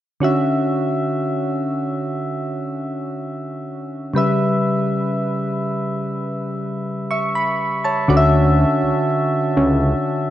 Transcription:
0.20 D3 C#4 F#4 E5
4.14 C#3 G3 B4
4.18 E5
7.11 E5 C#6
7.35 B5
7.84 C#5 A5
8.08 D2 D3 C#4 F#4 D5
8.17 E5
8.83 C#2
9.57 C#2

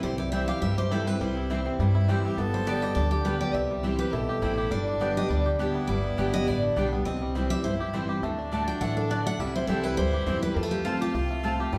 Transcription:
Already playing: C4 E4 G4
0.03 C2 C3 G3 G4 C5
0.18 E4 D5
0.32 E3 G3 C4 E4 C5 E5 G5
0.48 G4 F5
0.62 G2 G3 E5
0.78 G4 C5
0.91 E3 G3 C4 E4 A4 C5 G5
1.07 C4 E4 B4
1.21 C2 C3 G3 E4 C5
1.37 C4
1.50 E3 G3 C4 E4 C5 G5
1.66 C4
1.79 G2 G3 E4
1.95 E4
2.08 E3 G3 C4 E4 G4 C5 G5
2.24 C4 G4
2.37 G1 G2 B3 A4
2.54 G3 C5
2.67 D3 G3 B3 G4 D5 G5
2.82 B3 G4 D#5
2.95 D2 D3 D4 D5
3.11 G4
3.24 D3 G3 B3 G4 B4 D5 G5
3.41 G4 D5
3.54 C2 C3 C4 G4 E5
3.71 G3
3.83 E3 G3 C4 E4 C5 G5
3.99 G4 B4
4.13 B1 B2 E4 A4
4.29 G4
4.42 A1 A2 G3 C4 E4 C5 G5
4.58 G4
4.71 G1 G2 G3 D4 D5
4.88 D4
4.99 D3 G3 B3 G4 D5 G5
5.17 G4 D#5
5.30 D2 D3 G3 D5
5.46 G4
5.59 D3 G3 B3 D4 E4 G4 D5 G5
5.75 B3
5.87 G1 G2 G3 D5
6.04 B3
6.17 G1 D3 G3 B3 D4 G4 D5 G5
6.34 B3 D#5
6.47 A1 D3 G3 D5
6.62 D4
6.76 B1 D3 G3 B3 D4 G4 D5 G5
6.93 B3 G4
7.05 C2 C3 C4 D#5
7.22 G3
7.35 E3 G3 C4 E4 C5 G5
7.50 G4 E5
7.64 G1 G2 E4 C5
7.80 G4
7.93 E3 G3 C4 E4 C5 G5
8.09 G4
8.23 D2 D3 A3 D4
8.39 D4
8.51 D3 A3 D4 F#4 D5 A5
8.68 D4 F#4 G5
8.81 A1 E3 A3 F#5
8.97 D4 A4
9.10 D3 A3 D4 F#4 D5 A5
9.26 A3 F#5
9.39 C2 C3 G3 E4 E5
9.56 E4 C5
9.67 C2 E3 G3 C4 E4 A4 C5 G5
9.83 E4 B4
9.97 D2 G2 G3 C5
10.14 G4
10.26 E2 E3 G3 C4 E4 C5 G5
10.43 G3 B4
10.56 F2 G3 F4 A4
10.63 A3
10.71 G4
10.84 F3 A3 C4 F4 C5 A5
11.01 F4 G4
11.14 C2 C3 F4
11.31 A3
11.43 F3 A3 C4 F4 C5 A5
11.60 G4
11.73 G2 G3 G4

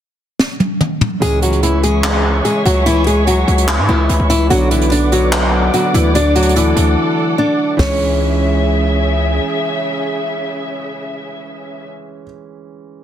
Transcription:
0.39 snare
0.60 high tom
0.81 mid tom
1.01 floor tom
1.20 C#2 C#3 E3 G#3 C#4 G#4 C#5 E5 C#6, closed hi-hat
1.42 F#3 F#4, closed hi-hat
1.53 closed hi-hat
1.63 E3 E4, closed hi-hat
1.83 G#3 G#4, closed hi-hat
2.04 clap, closed hi-hat
2.45 G#3 G#4, closed hi-hat
2.65 C#2 F#3 F#4, closed hi-hat
2.86 E3 E4, closed hi-hat
3.07 G#3 G#4, closed hi-hat
3.27 F#3 F#4, closed hi-hat
3.48 C#2, closed hi-hat
3.58 closed hi-hat
3.68 clap, closed hi-hat
3.79 G#2
3.89 C#2 E3 E4
4.09 C#2, closed hi-hat
4.20 C#2
4.30 E3 E4, closed hi-hat
4.49 B1 D3 F#3 B3 D4 F#4 B4 D5 F#5 D6, closed hi-hat
4.71 E3 E4, closed hi-hat
4.81 closed hi-hat
4.92 D4 D5, closed hi-hat
5.12 F#3 F#4, closed hi-hat
5.32 clap, closed hi-hat
5.73 D3 F#3 B3 D4 F#4, closed hi-hat
5.94 D2 E3 E4, closed hi-hat
6.14 D3 F#3 A3 D4 A4 D5, closed hi-hat
6.35 F#3 F#4, closed hi-hat
6.42 closed hi-hat
6.49 closed hi-hat
6.56 E3 E4, closed hi-hat
6.76 D2, closed hi-hat
7.38 D4 D5
7.77 C#2 C#3 E3 G#3 C#4 G#4 C#5 E5, kick, snare, open hi-hat
7.81 C#4

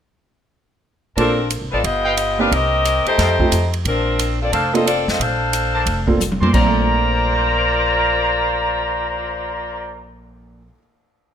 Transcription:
1.16 A#1 F3 A#3 C4 D4 F4 A4 A#4 C5 D5 A5, kick, ride
1.50 hi-hat pedal, ride
1.62 C2
1.71 A1 C4 F4 A4 B4 D5 D#5 F5 A5
1.84 G1 B3 F4 G4 D#5, kick, ride
2.05 B4 D#5 F5 G5
2.17 hi-hat pedal, ride
2.38 A#3 C4 D4 D#4 G4 B4 F5
2.52 C2 C4 G4 A#4 D#5, kick, ride
2.85 hi-hat pedal, ride
3.06 A3 D#4 G4 C5, muted upright bass stroke, ride
3.17 F2 A4 D#5 F5 G5, kick, snare, ride
3.40 A3 C4 D#4 F4 G4, kick
3.52 F2, hi-hat pedal, ride
3.73 ride
3.85 A#1 F3 C4 D4 A#4, kick, ride
4.19 hi-hat pedal, ride
4.42 C4 F4 A4 D5
4.51 F1 D4 A4 A#4 C5 D5 F5 A5, kick, ride
4.73 A#3 C4 D4 F4 A4 D#5, ride
4.87 C4 F4 A4 D5, hi-hat pedal, ride
5.08 F2 C4 F4 A4 D#5, snare
5.20 A#1 D4 A4 C5 F5, kick, ride
5.53 hi-hat pedal, ride
5.74 A#4 C5 D5 A5
5.86 F1, kick, ride
6.07 A#3 C4 D4 F4 A4, kick
6.20 hi-hat pedal, high tom
6.32 high tom
6.41 F2 A#2 A#4 C5 D5 C6, high tom
6.47 A#3
6.53 A#1 C4 F4 A#4 C5 D5 A#5, kick, crash
6.60 D4
6.66 A3
6.75 cymbal swell

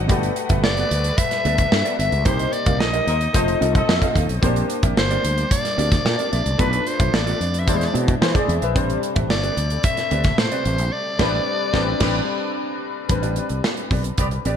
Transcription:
Already playing: F#3 D4 D#4 C5 F#5
0.07 G1 G3 A3 B3 F#4 G4 A4 B4 D5, kick, closed hi-hat
0.23 closed hi-hat
0.35 muted clean electric guitar stroke, closed hi-hat
0.49 G1 B3 F#4 A4 E5, kick, closed hi-hat
0.63 F#1 D5, muted clean electric guitar stroke, snare
0.77 B3 F#4 A4 D5, closed hi-hat
0.91 D2, muted clean electric guitar stroke, closed hi-hat
1.04 muted clean electric guitar stroke, closed hi-hat
1.18 E5, kick, closed hi-hat
1.31 muted clean electric guitar stroke, snare, closed hi-hat
1.45 D2 B3 F#4 A4 D5, closed hi-hat
1.58 muted clean electric guitar stroke, kick, closed hi-hat
1.72 G2, muted clean electric guitar stroke, snare
1.85 B3 F#4 A4 D5, closed hi-hat
1.99 G1 B3 F#4 A4 E5, closed hi-hat
2.12 C#2, muted clean electric guitar stroke, closed hi-hat
2.25 C2 C3 A#3 D#4 G4 A#4 C5 D#5, kick, closed hi-hat
2.39 closed hi-hat
2.53 D5, muted clean electric guitar stroke, closed hi-hat
2.66 C2 D#4 G4 A#4 F5, kick, closed hi-hat
2.79 A#1 D#5, muted clean electric guitar stroke, snare
2.93 D#4 G4 A#4 D#5, closed hi-hat
3.07 D#2 C4 A#4 D#5, muted clean electric guitar stroke, closed hi-hat
3.21 muted clean electric guitar stroke, closed hi-hat
3.33 F1 F3 A3 C4 D#4 F4 A4 C5 D#5, kick, closed hi-hat
3.48 muted clean electric guitar stroke, closed hi-hat
3.61 C2 C4 F4 A4 D#5, closed hi-hat
3.75 C4 A4 D#5, muted clean electric guitar stroke, kick, closed hi-hat
3.89 F2, muted clean electric guitar stroke, snare
4.02 C4 F4 A4 D#5, kick, closed hi-hat
4.16 D#2 C4 F4 A4 F5, kick, closed hi-hat
4.29 B1, muted clean electric guitar stroke, closed hi-hat
4.41 A#1 G3 A#3 C4 D4 G4 A#4 C5 D5, kick, closed hi-hat
4.56 closed hi-hat
4.70 muted clean electric guitar stroke, closed hi-hat
4.83 A#1 C4 G4 A#4 E5, kick, closed hi-hat
4.97 G1 C5, snare
5.11 C4 G4 A#4 D5, closed hi-hat
5.24 D2, muted clean electric guitar stroke, closed hi-hat
5.38 muted clean electric guitar stroke, closed hi-hat
5.51 D5, kick, closed hi-hat
5.65 muted clean electric guitar stroke, snare, closed hi-hat
5.78 D2 C4 G4 A#4 D5, closed hi-hat
5.92 muted clean electric guitar stroke, kick, snare, closed hi-hat
6.05 A#2, muted clean electric guitar stroke, snare
6.18 C4 G4 A#4 D5, closed hi-hat
6.31 A#1 C4 G4 A#4 D5 E5, closed hi-hat
6.45 C2, muted clean electric guitar stroke, closed hi-hat
6.58 B1 A3 B3 D4 F4 A4 B4 D5, kick, closed hi-hat
6.73 closed hi-hat
6.86 C5, muted clean electric guitar stroke, closed hi-hat
6.99 B1 B3 F4 A4 E5, kick, closed hi-hat
7.13 A1 D5, muted clean electric guitar stroke, snare
7.26 B3 F4 A4 D5, closed hi-hat
7.40 F2, muted clean electric guitar stroke, closed hi-hat
7.53 muted clean electric guitar stroke, closed hi-hat
7.59 E5
7.66 E2 E3 G3 G#3 D4 E4 C5 D5, kick, closed hi-hat
7.73 G#3
7.77 C5, muted clean electric guitar stroke
7.81 snare, closed hi-hat
7.86 D5
7.93 B2 C4 E4 G#4 D5, closed hi-hat
8.08 muted clean electric guitar stroke, kick, closed hi-hat
8.22 E3 C5, muted clean electric guitar stroke, snare
8.34 C4 E4 G#4 D5, kick, closed hi-hat
8.47 E2 C4 E4 G#4 E5, closed hi-hat
8.62 A#1 B4 E5, muted clean electric guitar stroke, closed hi-hat
8.75 A1 C3 G3 A3 C4 D4 G4 B4 C5 D5, kick, closed hi-hat
8.90 closed hi-hat
9.02 muted clean electric guitar stroke, closed hi-hat
9.16 A1 C4 G4 B4 E5, kick, closed hi-hat
9.29 G1 D5, muted clean electric guitar stroke, snare
9.43 C4 G4 B4 D5, closed hi-hat
9.57 D2, muted clean electric guitar stroke, closed hi-hat
9.70 muted clean electric guitar stroke, closed hi-hat
9.84 E5, kick, closed hi-hat
9.97 muted clean electric guitar stroke, snare, closed hi-hat
10.11 D2 C4 G4 B4 D5, closed hi-hat
10.24 muted clean electric guitar stroke, kick, snare, closed hi-hat
10.38 A2 C5, muted clean electric guitar stroke, snare
10.52 C4 G4 B4 D5, closed hi-hat
10.65 A1 C4 G4 B4 E5, closed hi-hat
10.78 A#1, muted clean electric guitar stroke, closed hi-hat
10.92 D5
11.19 A1 G3 B3 C4 D4 G4 B4 D5 E5, kick, snare, crash
11.72 A1 G3 B3 C4 D4 G4 B4 D5, kick, snare
12.00 A1 G3 B3 C4 D4 G4 B4 D5, kick, snare, crash
13.08 A1 G3 C4 D4 B4, muted clean electric guitar stroke, kick, closed hi-hat
13.23 C4 G4 B4 D5, closed hi-hat
13.36 C4 G4 B4 D5, closed hi-hat
13.49 C2, muted clean electric guitar stroke, closed hi-hat
13.64 snare
13.77 muted clean electric guitar stroke, closed hi-hat
13.91 B1 C4 G4 B4 D5, kick, open hi-hat
14.04 muted clean electric guitar stroke, closed hi-hat
14.18 C2 B3 G4 D5, muted clean electric guitar stroke, kick, closed hi-hat
14.31 muted clean electric guitar stroke, closed hi-hat
14.45 A1 B3 C4 G4 B4 D5, closed hi-hat

